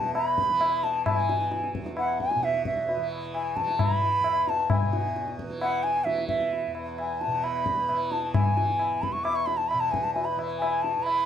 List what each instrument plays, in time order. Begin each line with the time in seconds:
Already playing: tanpura E2 B2 E3, bansuri A5
0.04 tabla te
0.14 bansuri B5, tabla na
0.38 tabla ke
0.49 tanpura E3
0.61 tabla na
0.83 bansuri A5, tabla te
1.06 bansuri A5, tabla na, tabla ge
1.11 tanpura E3
1.17 bansuri G#5
1.29 tabla te
1.51 tabla te
1.64 tabla te
1.73 tanpura E2, tabla ke
1.86 tabla te
1.97 bansuri F#5, tabla na
2.20 bansuri G#5, tabla ke
2.31 tabla te
2.35 tanpura B2
2.43 bansuri E5, tabla te
2.54 tabla te
2.65 bansuri E5, tabla ke
2.77 tabla te
2.89 tabla tin
2.97 tanpura E3
3.12 tabla na
3.35 bansuri G#5, tabla na
3.56 tanpura E3, bansuri A5, tabla ke
3.68 tabla te
3.79 bansuri B5, tabla na, tabla ge
4.02 tabla te
4.21 tanpura E2, tabla na
4.47 bansuri A5, tabla te
4.70 bansuri G#5, tabla na, tabla ge
4.81 tanpura B2
4.93 tabla te
5.16 tabla te
5.28 tabla te
5.39 tabla ke
5.44 tanpura E3
5.50 tabla te
5.61 bansuri F#5, tabla na
5.83 bansuri G#5, tabla te
6.04 tanpura E3, bansuri E5, tabla te
6.18 tabla te
6.28 bansuri E5, tabla ke
6.40 tabla te
6.53 tabla tin
6.67 tanpura E2
6.75 tabla na
6.98 bansuri G#5, tabla na
7.21 bansuri A5, tabla te
7.27 tanpura B2
7.44 bansuri B5, tabla na
7.66 tabla ke
7.89 tanpura E3, tabla na
8.12 bansuri A5, tabla te
8.34 bansuri G#5, tabla na, tabla ge
8.52 tanpura E3
8.57 tabla te
8.79 tabla na
9.02 bansuri B5, tabla ke
9.12 tanpura E2, bansuri C#6
9.24 bansuri D6, tabla na
9.35 bansuri C#6
9.46 bansuri B5, tabla te
9.57 bansuri A5
9.68 bansuri B5, tabla na
9.74 tanpura B2
9.80 bansuri A5
9.91 bansuri G#5, tabla ke
10.03 bansuri A5
10.14 bansuri G#5, tabla tin
10.25 bansuri B5
10.36 tanpura E3, tabla na
10.59 bansuri G#5, tabla na
10.82 bansuri A5, tabla te
10.97 tanpura E3
11.03 bansuri B5, tabla na